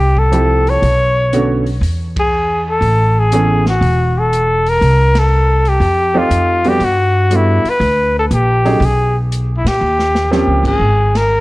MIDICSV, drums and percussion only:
0, 0, Header, 1, 2, 480
1, 0, Start_track
1, 0, Tempo, 498753
1, 796, Time_signature, 4, 2, 24, 8
1, 10975, End_track
2, 0, Start_track
2, 0, Title_t, "Drums"
2, 160, Note_on_c, 9, 36, 47
2, 257, Note_off_c, 9, 36, 0
2, 312, Note_on_c, 9, 42, 48
2, 409, Note_off_c, 9, 42, 0
2, 642, Note_on_c, 9, 46, 35
2, 738, Note_off_c, 9, 46, 0
2, 793, Note_on_c, 9, 46, 45
2, 890, Note_off_c, 9, 46, 0
2, 1277, Note_on_c, 9, 42, 54
2, 1373, Note_off_c, 9, 42, 0
2, 1601, Note_on_c, 9, 46, 35
2, 1698, Note_off_c, 9, 46, 0
2, 1761, Note_on_c, 9, 46, 46
2, 1857, Note_off_c, 9, 46, 0
2, 2083, Note_on_c, 9, 36, 75
2, 2084, Note_on_c, 9, 51, 68
2, 2179, Note_off_c, 9, 36, 0
2, 2180, Note_off_c, 9, 51, 0
2, 2715, Note_on_c, 9, 46, 43
2, 2811, Note_off_c, 9, 46, 0
2, 3197, Note_on_c, 9, 42, 55
2, 3293, Note_off_c, 9, 42, 0
2, 3525, Note_on_c, 9, 38, 50
2, 3621, Note_off_c, 9, 38, 0
2, 3683, Note_on_c, 9, 46, 44
2, 3779, Note_off_c, 9, 46, 0
2, 4165, Note_on_c, 9, 42, 50
2, 4261, Note_off_c, 9, 42, 0
2, 4485, Note_on_c, 9, 46, 37
2, 4581, Note_off_c, 9, 46, 0
2, 4635, Note_on_c, 9, 46, 46
2, 4731, Note_off_c, 9, 46, 0
2, 4955, Note_on_c, 9, 38, 76
2, 4957, Note_on_c, 9, 51, 60
2, 5051, Note_off_c, 9, 38, 0
2, 5053, Note_off_c, 9, 51, 0
2, 5442, Note_on_c, 9, 46, 36
2, 5538, Note_off_c, 9, 46, 0
2, 5598, Note_on_c, 9, 46, 45
2, 5694, Note_off_c, 9, 46, 0
2, 6074, Note_on_c, 9, 42, 53
2, 6170, Note_off_c, 9, 42, 0
2, 6397, Note_on_c, 9, 46, 36
2, 6493, Note_off_c, 9, 46, 0
2, 6550, Note_on_c, 9, 46, 46
2, 6647, Note_off_c, 9, 46, 0
2, 7036, Note_on_c, 9, 42, 54
2, 7132, Note_off_c, 9, 42, 0
2, 7366, Note_on_c, 9, 46, 40
2, 7463, Note_off_c, 9, 46, 0
2, 7518, Note_on_c, 9, 46, 45
2, 7614, Note_off_c, 9, 46, 0
2, 7996, Note_on_c, 9, 42, 53
2, 8092, Note_off_c, 9, 42, 0
2, 8329, Note_on_c, 9, 46, 37
2, 8426, Note_off_c, 9, 46, 0
2, 8489, Note_on_c, 9, 46, 45
2, 8585, Note_off_c, 9, 46, 0
2, 8969, Note_on_c, 9, 42, 54
2, 9066, Note_off_c, 9, 42, 0
2, 9297, Note_on_c, 9, 38, 75
2, 9299, Note_on_c, 9, 51, 67
2, 9393, Note_off_c, 9, 38, 0
2, 9395, Note_off_c, 9, 51, 0
2, 9611, Note_on_c, 9, 38, 56
2, 9707, Note_off_c, 9, 38, 0
2, 9766, Note_on_c, 9, 38, 73
2, 9862, Note_off_c, 9, 38, 0
2, 9928, Note_on_c, 9, 38, 52
2, 10024, Note_off_c, 9, 38, 0
2, 10250, Note_on_c, 9, 36, 71
2, 10252, Note_on_c, 9, 49, 67
2, 10346, Note_off_c, 9, 36, 0
2, 10349, Note_off_c, 9, 49, 0
2, 10732, Note_on_c, 9, 38, 66
2, 10734, Note_on_c, 9, 51, 57
2, 10828, Note_off_c, 9, 38, 0
2, 10830, Note_off_c, 9, 51, 0
2, 10975, End_track
0, 0, End_of_file